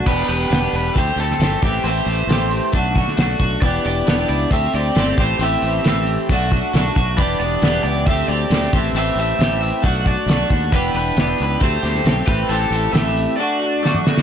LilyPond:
<<
  \new Staff \with { instrumentName = "Overdriven electric guitar" } { \time 4/4 \key e \minor \tempo 4 = 135 b'8 b'4 b'8 c''8 a'4 g'8 | c''2 r2 | d''8 d''4 d''8 e''8 d''4 c''8 | e''2 r2 |
d''8 d''4 d''8 e''8 d''4 r8 | e''8 e''4 e''8 fis''8 d''4 r8 | b'8 b'4 b'8 c''4 r8 b'8 | a'4 e''4 d''4. r8 | }
  \new Staff \with { instrumentName = "Clean electric guitar" } { \time 4/4 \key e \minor <b d' g'>8 <d' g'>8 <b d' g'>4 <a c' g'>8 <c' g'>8 <a c' g'>8 <e a c' g'>8 | <e a c' g'>8 <a c' g'>8 <e a c' g'>4 <a d' fis'>8 <d' fis'>8 <a d' fis'>8 <d' fis'>8 | <e b d' g'>8 <b d' g'>8 <e b d' g'>4 <a c' g'>8 <c' g'>8 <a c' g'>8 <e a c' g'>8 | <e a c' g'>8 <a c' g'>8 <e a c' g'>4 <a d' fis'>8 <d' fis'>8 <a d' fis'>8 <d' fis'>8 |
<e b d' g'>8 <b d' g'>8 <e b d' g'>4 <a c' g'>8 <c' g'>8 <a c' g'>8 <e a c' g'>8 | <e a c' g'>8 <a c' g'>8 <e a c' g'>4 <a d' fis'>8 <d' fis'>8 <a d' fis'>8 <d' fis'>8 | <e b d' g'>8 <b d' g'>8 <e b d' g'>4 <a c' g'>8 <c' g'>8 <a c' g'>8 <e a c' g'>8 | <e a c' g'>8 <a c' g'>8 <e a c' g'>4 <a d' fis'>8 <d' fis'>8 <a d' fis'>8 <d' fis'>8 | }
  \new Staff \with { instrumentName = "Fingered electric bass" } { \clef bass \time 4/4 \key e \minor e,,8 e,,8 e,,8 e,,8 d,8 d,8 g,,8 a,,8 | a,,8 a,,8 a,,4 b,,4 b,,8 b,,8 | e,,8 e,,8 e,,8 cis,8 d,8 d,8 g,,8 a,,8 | a,,8 a,,8 a,,4 b,,4 b,,8 b,,8 |
e,,8 e,,8 e,,8 cis,8 d,8 d,8 d,8 a,,8 | a,,8 a,,8 a,,4 b,,4 b,,8 dis,8 | e,,8 e,,8 e,,8 cis,8 d,8 d,8 b,,8 a,,8 | a,,8 a,,8 a,,4 r2 | }
  \new DrumStaff \with { instrumentName = "Drums" } \drummode { \time 4/4 <cymc bd>8 hho8 <hho sn>8 hho8 <hho bd>8 hho16 sn16 <hho sn>8 <hho bd>8 | hho8 hho8 <hho sn>8 hho8 <hho bd>8 <hho bd sn>16 sn16 <hho sn>8 <hho bd>8 | <hho bd>8 hho8 <hho sn>8 hho8 <hho bd>8 hho8 <hho sn>8 <hho bd>8 | hho8 hho8 <hho sn>8 hho8 <hho bd>8 <hho bd>8 <hho sn>8 <hho bd>8 |
<hho bd>8 hho8 <hho sn>8 hho8 <hho bd>8 hho8 <hho sn>8 <hho bd>8 | hho8 hho8 <hho sn>8 hho8 <hho bd>8 <hho bd>8 <hho sn>8 <hho bd>8 | <hho bd>8 hho8 <hho sn>8 hho8 <hho bd>8 <hho sn>16 sn16 <hho sn>8 <hho bd>8 | hho8 hho8 <hho sn>8 hho8 r4 sn16 toml16 sn16 sn16 | }
>>